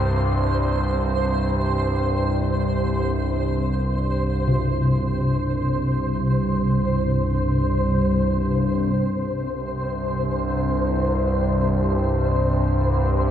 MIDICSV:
0, 0, Header, 1, 4, 480
1, 0, Start_track
1, 0, Tempo, 500000
1, 12776, End_track
2, 0, Start_track
2, 0, Title_t, "Synth texture"
2, 0, Program_c, 0, 99
2, 0, Note_on_c, 0, 72, 82
2, 8573, Note_off_c, 0, 72, 0
2, 8584, Note_on_c, 0, 72, 79
2, 12776, Note_off_c, 0, 72, 0
2, 12776, End_track
3, 0, Start_track
3, 0, Title_t, "Bronze metallophone"
3, 0, Program_c, 1, 11
3, 0, Note_on_c, 1, 60, 57
3, 1640, Note_off_c, 1, 60, 0
3, 4298, Note_on_c, 1, 48, 75
3, 10701, Note_off_c, 1, 48, 0
3, 12776, End_track
4, 0, Start_track
4, 0, Title_t, "Synth drone"
4, 0, Program_c, 2, 95
4, 0, Note_on_c, 2, 36, 71
4, 0, Note_on_c, 2, 43, 70
4, 8558, Note_off_c, 2, 43, 0
4, 8569, Note_off_c, 2, 36, 0
4, 8570, Note_on_c, 2, 43, 75
4, 8580, Note_on_c, 2, 36, 77
4, 12776, Note_off_c, 2, 36, 0
4, 12776, Note_off_c, 2, 43, 0
4, 12776, End_track
0, 0, End_of_file